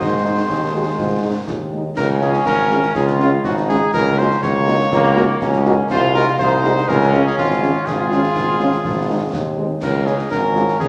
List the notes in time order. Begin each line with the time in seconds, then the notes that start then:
0.00 G#2 D#3 G#3 D#4 C5, concert bass drum, snare, crash
0.25 G#3 D#4
0.49 D#2 D#4, concert bass drum, snare
0.74 G#3 D#4 F#4
0.98 G#2 F4, concert bass drum, snare
1.23 G#3 D#4
1.47 D#2 F4, concert bass drum, snare
1.72 G#3 D#4
1.97 C#2 C#4 A#4, concert bass drum, snare, crash
2.21 G#3 C#4 F4 G#4, snare
2.33 snare
2.46 G#1 A#4, concert bass drum, snare
2.70 G#3 C#4 F4, snare
2.83 snare
2.95 C#2 F4 G#4, concert bass drum, snare
3.07 snare
3.20 G#3 C#4 F4, snare
3.44 G#1 D#4 F#4, concert bass drum, snare
3.57 snare
3.69 G#3 C#4 F4 G#4, snare
3.93 C#2 C#4 A#4, concert bass drum, snare, crash
4.17 A#3 D#4 F#4 C5, snare
4.31 snare
4.43 C#2 A#3 C#5, concert bass drum, snare
4.67 A#3 D#4 F#4, snare
4.80 snare
4.92 C#2 A#3, concert bass drum, snare
5.04 snare
5.16 A#3 D#4 F#4, snare
5.41 C#2 C#4, concert bass drum, snare
5.53 snare
5.65 A#3 D#4 F#4, snare
5.90 C2 F4 C5, concert bass drum, snare, crash
6.14 G#3 D#4 F#4 A#4, snare
6.27 snare
6.39 C2 D#4 C5, concert bass drum, snare
6.63 G#3 D#4 F#4, snare
6.76 snare
6.88 C#2 C#4 A#4, concert bass drum, snare
7.01 snare
7.13 G#3 C#4 F4, snare
7.26 G#4
7.37 G#1 F4, concert bass drum, snare
7.50 snare
7.62 G#3 C#4 F4, snare
7.86 G#1 F4 G#4, concert bass drum, snare, crash
8.11 G#3 C#4 F4, snare
8.23 snare
8.35 G#1, concert bass drum, snare
8.60 G#3 C#4 F4, snare
8.72 snare
8.84 G#1, concert bass drum, snare
9.09 G#3 C4 D#4
9.33 D#2, concert bass drum, snare
9.57 G#3 C4 D#4
9.82 C#2 A#4, concert bass drum, snare, crash
10.06 G#3 C#4 F4 G#4, snare
10.19 snare
10.31 G#1 C#4 A#4, concert bass drum, snare
10.55 G#3 C#4 F4, snare
10.68 snare
10.80 C#2 C#4 G#4, concert bass drum, snare